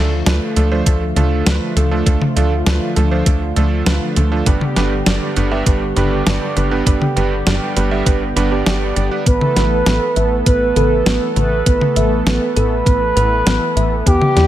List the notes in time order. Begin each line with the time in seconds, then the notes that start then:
Already playing: D2 D3 F3 A3 D4 F4 A4
0.26 D2 F3 A3 D4 F4 B4, snare, closed hi-hat
0.56 D2 F3 A3 D4 F4 A4, closed hi-hat
0.72 F3 A3 D4 F4 C5
0.86 D2 F3 A3 D4 F4 A4, kick, closed hi-hat
1.16 D2 F3 A3 D4 F4 A4, closed hi-hat, mid tom
1.46 D2 F3 A3 D4 F4 B4, snare, closed hi-hat
1.76 D2 F3 A3 D4 F4 A4, closed hi-hat, mid tom
1.91 F3 A3 D4 F4 A4
2.06 D2 F3 A3 D4 F4 A4, kick, closed hi-hat
2.22 mid tom
2.36 D2 F3 A3 D4 F4 A4, closed hi-hat
2.66 D2 F3 A3 D4 F4 B4, snare, closed hi-hat
2.96 D2 F3 A3 D4 F4 A4, closed hi-hat
3.11 F3 A3 D4 F4 C5
3.26 D2 F3 A3 D4 F4 A4, kick, closed hi-hat
3.56 D2 F3 A3 D4 F4 A4, closed hi-hat
3.86 D2 F3 A3 D4 F4 B4, snare, closed hi-hat
4.16 D2 F3 A3 D4 F4 A4, closed hi-hat
4.32 F3 A3 D4 F4 A4
4.46 G1 G2 G3 B3 D4 G4 B4, kick, closed hi-hat
4.61 mid tom
4.76 G1 G2 G3 B3 D4 G4 B4, snare, closed hi-hat
5.06 G1 G2 G3 B3 D4 G4 D5, snare, closed hi-hat
5.36 G1 G2 G3 B3 D4 G4 B4, closed hi-hat
5.51 G2 G3 B3 D4 G4 E5
5.66 G1 G2 G3 B3 D4 G4 B4, kick, closed hi-hat
5.96 G1 G2 G3 B3 D4 G4 B4, closed hi-hat, mid tom
6.26 G1 G2 G3 B3 D4 G4 D5, snare, closed hi-hat
6.56 G1 G2 G3 B3 D4 G4 B4, closed hi-hat, mid tom
6.71 G2 G3 B3 D4 G4 B4
6.86 G1 G2 G3 B3 D4 G4 B4, kick, closed hi-hat
7.02 mid tom
7.16 G1 G2 G3 B3 D4 G4 B4, closed hi-hat
7.46 G1 G2 G3 B3 D4 G4 D5, snare, closed hi-hat
7.76 G1 G2 G3 B3 D4 G4 B4, closed hi-hat
7.91 G2 G3 B3 D4 G4 E5
8.06 G1 G2 G3 B3 D4 G4 B4, kick, closed hi-hat
8.36 G1 G2 G3 B3 D4 G4 B4, closed hi-hat
8.51 G2 G3 B3 D4 G4 D5
8.66 G1 G2 G3 B3 D4 G4 D5, snare, closed hi-hat
8.96 G1 G3 B3 D4 G4 D5, closed hi-hat
9.11 G3 B3 D4 G4 B4
9.26 A1 E3 A3 B3 A4 B4, kick, closed hi-hat
9.41 mid tom
9.56 A1 B4, snare, closed hi-hat
9.86 A1 B3, snare, closed hi-hat
10.16 A1 E5, closed hi-hat
10.46 A1 B3 B4, kick, closed hi-hat
10.76 A1 A4, closed hi-hat, mid tom
11.06 A1 B3, snare, closed hi-hat
11.36 A1 B4, closed hi-hat, mid tom
11.66 A1 B3, kick, closed hi-hat
11.81 mid tom
11.96 A1 E5, closed hi-hat
12.26 A1 B3 B4, snare, closed hi-hat
12.56 A1 A4, closed hi-hat
12.86 A1 B3, kick, closed hi-hat
13.16 A1 B4, closed hi-hat
13.46 A1 B3, snare, closed hi-hat
13.76 A1 E5, closed hi-hat
14.06 E2 G3 B3 G4, kick, closed hi-hat
14.22 mid tom
14.36 E2 G4, snare, closed hi-hat